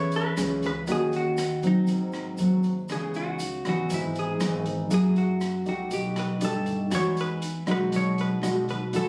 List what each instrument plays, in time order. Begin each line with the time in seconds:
Already playing: upright bass E2, nylon-string guitar E3 C#4 G#4 B4, hollow-body jazz guitar C#5
0.12 closed hi-hat, shaker
0.16 hollow-body jazz guitar B4
0.37 upright bass C#2, nylon-string guitar C#4 G#4 B4, cross-stick, closed hi-hat, shaker
0.62 kick, closed hi-hat, shaker
0.66 hollow-body jazz guitar B4
0.87 upright bass D#2, nylon-string guitar D#3 A#3 C#4 F#4, kick, closed hi-hat, shaker
0.92 hollow-body jazz guitar G#4
1.12 closed hi-hat, shaker
1.16 hollow-body jazz guitar F#4
1.37 cross-stick, closed hi-hat, shaker
1.63 upright bass A#1, nylon-string guitar F#3 C4, kick, closed hi-hat, shaker
1.67 hollow-body jazz guitar D#4
1.87 upright bass G#1, nylon-string guitar G#2, kick, closed hi-hat, shaker
2.12 cross-stick, closed hi-hat, shaker
2.37 upright bass D#2, nylon-string guitar F#3 A3 C4, closed hi-hat, shaker
2.63 closed hi-hat, shaker
2.88 upright bass C#2, nylon-string guitar C#3 E3 B3 D#4, hollow-body jazz guitar G#4, kick, cross-stick, closed hi-hat, shaker
3.14 hollow-body jazz guitar F#4, closed hi-hat, shaker
3.39 closed hi-hat, shaker
3.65 upright bass G#1, nylon-string guitar E3 B3 D#4, cross-stick, closed hi-hat, shaker
3.69 hollow-body jazz guitar F#4
3.90 upright bass G#1, nylon-string guitar G#2, kick, closed hi-hat, shaker
3.94 hollow-body jazz guitar E4
4.15 closed hi-hat, shaker
4.19 hollow-body jazz guitar G#4
4.40 upright bass G#1, nylon-string guitar E3 B3 D#4, cross-stick, closed hi-hat, shaker
4.65 kick, closed hi-hat, shaker
4.90 upright bass F#2, nylon-string guitar F#3 A3 E4 G#4, kick, closed hi-hat, shaker
4.94 hollow-body jazz guitar G#4
5.15 hollow-body jazz guitar F#4, closed hi-hat, shaker
5.41 cross-stick, closed hi-hat, shaker
5.65 upright bass C#2, nylon-string guitar A3 D#4 G4, hollow-body jazz guitar F#4, closed hi-hat, shaker
5.91 upright bass B1, nylon-string guitar B2, hollow-body jazz guitar G4, kick, closed hi-hat, shaker
6.16 hollow-body jazz guitar B4, cross-stick, closed hi-hat, shaker
6.41 upright bass G2, nylon-string guitar A3 D#4 G4, hollow-body jazz guitar A4, closed hi-hat, shaker
6.66 kick, closed hi-hat, shaker
6.90 upright bass E2, nylon-string guitar E3 G#3 D#4 F#4, kick, cross-stick, closed hi-hat, shaker
6.95 hollow-body jazz guitar C#5
7.17 closed hi-hat, shaker
7.21 hollow-body jazz guitar B4
7.42 closed hi-hat, shaker
7.66 upright bass B1, nylon-string guitar G#3 D#4 F#4, cross-stick, closed hi-hat, shaker
7.71 hollow-body jazz guitar B4
7.92 upright bass B1, nylon-string guitar B2, kick, closed hi-hat, shaker
7.96 hollow-body jazz guitar C#5
8.18 hollow-body jazz guitar B4, closed hi-hat, shaker
8.41 upright bass B1, nylon-string guitar G#3 D#4 F#4, cross-stick, closed hi-hat, shaker
8.68 hollow-body jazz guitar B4, kick, closed hi-hat, shaker
8.93 upright bass E2, nylon-string guitar E3 G#3 D#4 F#4, hollow-body jazz guitar A4, kick, closed hi-hat, shaker